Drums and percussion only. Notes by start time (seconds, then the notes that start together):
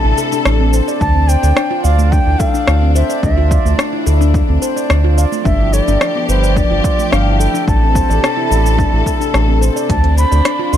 0.18 shaker
0.32 shaker
0.45 cross-stick, shaker
0.73 shaker
0.88 shaker
1.01 kick, shaker
1.29 shaker
1.44 shaker
1.57 cross-stick, shaker
1.84 shaker
1.99 shaker
2.12 kick, shaker
2.40 kick, shaker
2.55 shaker
2.67 cross-stick, shaker
2.96 shaker
3.10 shaker
3.23 kick, shaker
3.51 kick, shaker
3.66 shaker
3.79 cross-stick, shaker
4.07 shaker
4.21 shaker
4.34 kick, shaker
4.62 shaker
4.77 shaker
4.90 cross-stick, shaker
5.18 shaker
5.33 shaker
5.45 kick, shaker
5.73 shaker
5.88 shaker
6.01 cross-stick, shaker
6.29 shaker
6.44 shaker
6.57 kick, shaker
6.84 kick, shaker
6.99 shaker
7.13 cross-stick, shaker
7.41 shaker
7.55 shaker
7.68 kick, shaker
7.95 kick, shaker
8.11 shaker
8.24 cross-stick, shaker
8.52 shaker
8.66 shaker
8.79 kick, shaker
9.06 kick, shaker
9.21 shaker
9.34 cross-stick, shaker
9.63 shaker
9.77 shaker
9.90 kick, closed hi-hat, shaker
10.04 closed hi-hat
10.18 shaker
10.32 shaker
10.45 cross-stick, closed hi-hat, shaker
10.73 shaker